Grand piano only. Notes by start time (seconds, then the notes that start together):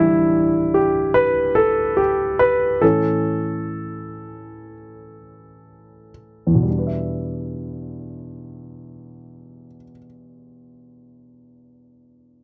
Already playing: E3 G3 D4 E4
0.74 G4
1.14 B4
1.55 A4
1.97 G4
2.39 B4
2.82 A2 E3 C#4 A4
6.47 E2
6.55 B2
6.63 G3
6.71 D4
6.79 B4
6.87 E5